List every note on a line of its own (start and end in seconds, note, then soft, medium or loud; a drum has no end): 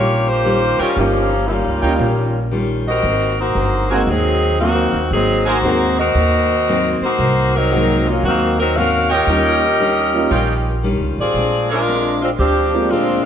0.00 0.75 A#1 medium
0.00 0.30 D#3 soft
0.00 0.30 G3 soft
0.00 0.26 A#3 medium
0.00 0.31 C#4 soft
0.00 0.26 F4 medium
0.00 0.31 F4 soft
0.00 0.26 G4 medium
0.00 0.26 C#5 loud
0.28 0.80 A#3 medium
0.28 0.79 F4 medium
0.28 0.80 G4 medium
0.28 0.80 C5 medium
0.45 0.81 D#3 medium
0.45 0.81 G3 medium
0.45 0.82 C#4 medium
0.45 0.82 F4 medium
0.79 0.97 G3 medium
0.79 0.97 C#4 medium
0.79 0.91 F4 medium
0.79 0.97 F4 medium
0.79 0.97 A#4 medium
0.79 0.91 C#5 medium
0.79 0.91 D#5 medium
0.79 0.91 G5 medium
0.79 muted upright bass stroke soft
0.97 1.62 G1 medium
0.97 1.33 D#3 soft
0.97 1.45 F3 medium
0.97 1.33 G3 soft
0.97 1.28 G3 medium
0.97 1.28 A#3 soft
0.97 1.45 A#3 medium
0.97 1.28 C#4 soft
0.97 1.45 C#4 medium
0.97 1.34 C#4 soft
0.97 1.28 D#4 soft
0.97 1.29 F4 medium
0.97 1.34 F4 soft
0.97 1.45 G4 medium
1.47 1.84 D#3 soft
1.47 1.85 G3 medium
1.47 2.53 A#3 medium
1.47 1.85 C#4 medium
1.47 1.50 E4 soft
1.47 1.86 F4 medium
1.47 2.53 F4 medium
1.51 2.54 G3 medium
1.51 2.54 C#4 medium
1.66 1.82 C#2 soft
1.82 1.99 D2 medium
1.82 1.99 G3 medium
1.82 1.99 A#3 medium
1.82 1.99 C#4 medium
1.82 1.99 D#4 medium
1.82 1.94 F4 medium
1.82 1.99 F4 medium
1.82 1.94 C#5 medium
1.82 1.94 D#5 medium
1.82 1.94 G5 medium
1.99 3.00 A#1 medium
1.99 2.36 D#3 soft
1.99 2.37 G3 soft
1.99 2.38 C#4 soft
2.03 2.38 F4 medium
2.51 2.88 D#3 medium
2.51 2.88 G3 medium
2.51 2.89 C#4 medium
2.51 2.89 F4 medium
2.88 3.36 C4 medium
2.88 3.36 F#4 medium
2.88 3.36 A#4 medium
2.88 3.36 D#5 medium
3.03 3.52 G#1 medium
3.03 3.40 G#2 soft
3.03 3.40 F#3 soft
3.03 3.41 A#3 soft
3.03 3.41 C4 soft
3.40 3.91 A#3 medium
3.40 3.91 D#4 medium
3.40 3.91 F#4 medium
3.40 3.91 C5 medium
3.55 4.04 G1 medium
3.55 3.92 G#2 medium
3.55 3.92 F#3 medium
3.55 3.92 A#3 medium
3.55 3.93 C4 medium
3.90 4.08 D#3 medium
3.90 4.07 G#3 medium
3.90 4.07 A#3 medium
3.90 4.08 A#3 medium
3.90 4.07 C4 medium
3.90 4.08 C4 medium
3.90 4.07 D#4 medium
3.90 4.02 F#4 medium
3.90 4.07 F#4 medium
3.90 4.08 F#4 medium
3.90 4.02 A#4 medium
3.90 4.02 C5 medium
3.90 4.02 G#5 medium
4.07 4.90 D#2 medium
4.07 4.44 G#2 soft
4.07 4.44 F#3 soft
4.07 4.60 F#3 medium
4.07 4.45 A#3 soft
4.07 4.59 C4 medium
4.07 4.45 C4 soft
4.07 4.61 D#4 medium
4.07 4.60 G#4 medium
4.59 4.95 G#2 medium
4.59 5.09 D#3 medium
4.59 4.96 F#3 medium
4.59 5.09 A#3 medium
4.59 4.96 A#3 medium
4.59 5.08 C4 medium
4.59 4.97 C4 medium
4.59 5.09 F#4 medium
4.93 5.10 D#2 medium
5.11 5.59 G#1 medium
5.11 5.48 G#2 soft
5.11 5.48 F#3 soft
5.11 5.44 F#3 medium
5.11 5.49 A#3 soft
5.11 5.44 C4 medium
5.11 5.49 C4 soft
5.11 5.44 D#4 medium
5.11 5.45 G#4 medium
5.45 5.99 A#3 medium
5.45 5.99 D#4 medium
5.45 5.58 F#4 medium
5.45 5.98 F#4 medium
5.45 5.58 A#4 medium
5.45 5.58 C5 medium
5.45 5.99 C5 medium
5.45 5.58 G#5 medium
5.62 6.11 D#2 medium
5.62 5.99 G#2 medium
5.62 6.00 F#3 medium
5.62 5.95 G#3 medium
5.62 5.95 A#3 soft
5.62 6.00 A#3 medium
5.62 5.95 C4 soft
5.62 6.01 C4 medium
5.62 5.95 D#4 medium
5.62 5.95 F#4 medium
5.99 6.98 C4 medium
5.99 6.99 F#4 medium
5.99 6.98 A#4 medium
5.99 6.99 D#5 medium
6.15 6.97 D#2 medium
6.15 6.51 G#2 soft
6.15 6.52 F#3 soft
6.15 6.53 A#3 soft
6.15 6.53 C4 soft
6.68 7.04 G#2 medium
6.68 7.04 F#3 medium
6.68 7.04 A#3 medium
6.68 7.05 C4 medium
7.01 7.55 A#3 medium
7.01 7.54 D#4 medium
7.01 7.55 F#4 medium
7.01 7.55 C5 medium
7.01 muted upright bass stroke soft
7.19 8.19 C2 medium
7.19 7.55 G#2 soft
7.19 7.56 F#3 soft
7.19 7.57 A#3 soft
7.23 7.57 C4 soft
7.55 8.07 F#3 medium
7.55 8.07 C4 medium
7.55 8.07 D#4 medium
7.55 8.07 A#4 medium
7.71 8.07 G#2 medium
7.71 8.08 F#3 medium
7.71 8.02 G#3 medium
7.71 8.02 A#3 soft
7.71 8.08 A#3 medium
7.71 8.03 C4 medium
7.71 8.09 C4 medium
7.71 8.03 D#4 medium
7.71 8.03 F#4 medium
8.08 8.25 F#3 medium
8.08 8.24 A#3 medium
8.08 8.25 C#4 medium
8.08 8.24 F4 medium
8.23 9.23 D#2 medium
8.23 8.59 G#2 soft
8.23 8.56 D#3 medium
8.23 8.60 F#3 soft
8.23 8.61 A#3 soft
8.23 8.57 A#3 medium
8.23 8.56 C4 medium
8.23 8.61 C4 soft
8.23 8.56 F#4 medium
8.60 8.75 F#3 medium
8.60 8.75 C4 medium
8.60 8.75 D#4 medium
8.60 8.75 A#4 medium
8.77 9.12 G#2 medium
8.77 9.12 F#3 medium
8.77 9.13 A#3 medium
8.77 9.13 C4 medium
8.77 9.10 C#4 medium
8.77 9.10 F#4 medium
8.77 9.11 A#4 medium
8.77 9.11 F5 loud
9.09 10.80 C#4 medium
9.09 9.75 F4 medium
9.09 10.80 G4 medium
9.09 10.80 A#4 medium
9.09 9.75 C#5 medium
9.09 9.75 D#5 medium
9.09 10.80 D#5 loud
9.09 9.76 G5 loud
9.27 10.27 D#2 medium
9.27 9.64 D#3 soft
9.27 9.59 G3 soft
9.27 9.65 G3 soft
9.27 9.59 A#3 soft
9.27 9.59 C#4 soft
9.27 9.65 C#4 soft
9.27 9.59 D#4 soft
9.27 9.59 F4 medium
9.32 9.66 F4 soft
9.79 10.15 D#3 medium
9.79 10.16 G3 medium
9.79 10.16 C#4 medium
9.79 10.17 F4 medium
10.14 10.30 G3 medium
10.14 10.29 A#3 medium
10.14 10.30 C#4 medium
10.14 10.30 D#4 medium
10.14 10.30 F4 medium
10.31 10.96 A#1 medium
10.31 10.67 D#3 soft
10.31 10.68 G3 soft
10.31 10.69 C#4 medium
10.31 10.54 F4 medium
10.31 10.54 C#5 medium
10.31 10.54 D#5 medium
10.31 10.54 G5 medium
10.35 10.69 F4 medium
10.83 11.19 D#3 medium
10.83 11.20 G3 medium
10.83 11.20 C#4 medium
10.83 11.20 F4 medium
11.00 11.16 C#2 medium
11.17 11.33 A1 medium
11.17 11.67 C4 medium
11.17 11.67 F4 medium
11.17 11.67 G#4 medium
11.17 11.67 D5 medium
11.34 12.34 A#1 medium
11.34 11.71 A#2 soft
11.34 11.72 G#3 soft
11.34 11.72 C4 soft
11.38 11.73 D4 soft
11.69 12.19 G#3 medium
11.69 11.81 D4 medium
11.69 12.19 D4 medium
11.69 12.19 F4 medium
11.69 11.81 A#4 medium
11.69 12.19 A#4 medium
11.69 11.81 C5 medium
11.69 11.81 G#5 medium
11.87 12.23 A#2 medium
11.87 12.23 G#3 medium
11.87 12.24 C4 soft
11.87 12.24 D4 medium
12.22 12.30 G#3 medium
12.22 12.30 C4 medium
12.22 12.29 D4 medium
12.22 12.30 F4 medium
12.39 13.21 D2 medium
12.39 12.75 A#2 soft
12.39 12.88 F3 medium
12.39 12.76 G#3 soft
12.39 12.87 C4 medium
12.39 12.76 C4 soft
12.39 12.87 D4 medium
12.39 12.77 D4 medium
12.39 12.87 G4 loud
12.74 13.25 G#3 medium
12.74 13.25 A#3 medium
12.74 13.25 C4 soft
12.74 13.25 D4 soft
12.74 13.25 F4 medium
12.90 13.25 A#2 medium
12.90 13.25 G#3 medium
12.90 13.25 C4 medium
12.90 13.25 D4 medium
12.90 13.25 F4 medium